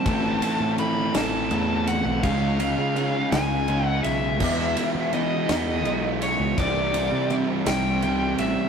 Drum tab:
CC |------|------|x-----|------|
RD |xxxxxx|xxxxxx|-xxxxx|xxxxxx|
SD |---o--|---o--|---o--|---o--|
BD |o-----|o-----|o-----|o-----|